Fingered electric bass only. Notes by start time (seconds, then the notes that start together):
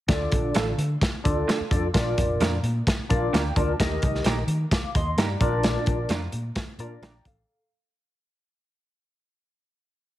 0.09 D2
0.32 A#1
0.55 A1
0.78 D3
1.14 muted fingered electric bass stroke
1.25 D2
1.60 muted fingered electric bass stroke
1.71 F2
1.94 A#1
2.18 F1
2.40 F2
2.63 A#2
2.98 muted fingered electric bass stroke
3.10 A#1
3.33 D2
3.56 D2
3.79 D#2
4.03 C2
4.24 A#1
4.47 D#3
4.83 muted fingered electric bass stroke
4.95 D#2
5.17 G2
5.41 A#1
5.87 A#1
6.09 F2
6.32 A#2
6.67 muted fingered electric bass stroke
6.78 A#2
7.25 A1